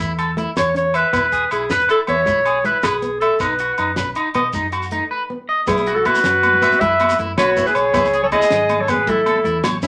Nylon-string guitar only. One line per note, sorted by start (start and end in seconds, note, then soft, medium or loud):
0.00 0.27 A3 medium
0.37 0.65 A3 medium
0.75 1.03 C#4 medium
1.13 1.41 B3 medium
1.70 1.98 C#4 medium
2.08 2.22 B3 medium
2.26 2.54 G#3 medium
2.64 2.92 G#3 medium
3.02 3.30 B3 medium
3.40 3.68 B3 medium
3.97 4.25 C#4 medium
4.35 4.49 B3 medium
4.54 4.82 G#3 medium
4.92 5.20 A3 medium
5.30 5.58 B3 medium
5.68 5.95 B3 medium
6.24 6.52 C#4 medium
6.62 6.76 B3 medium
6.81 7.09 G#3 medium
7.20 7.47 A3 medium
7.57 7.85 B3 medium
7.94 8.22 B3 medium
8.50 8.78 C#4 medium
8.89 9.03 B3 medium
9.08 9.35 A3 medium
9.44 9.73 A3 medium
9.83 9.87 C#4 medium